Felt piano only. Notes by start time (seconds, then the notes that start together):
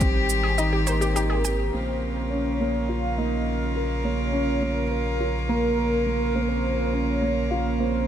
Already playing: C4 D#4 G4
0.00 G3
0.59 D#4
0.87 D#4
1.17 D#4
1.45 G4
1.74 A#3
2.32 C#4
2.61 A#3
2.89 F4
3.18 A#3
3.76 A#4
4.04 A#3
4.33 C#4
4.62 A#3
5.20 F4
5.49 A#3
5.78 A#4
6.06 A#3
6.35 A#3
6.93 C#4
7.22 A#3
7.51 F4
7.80 A#3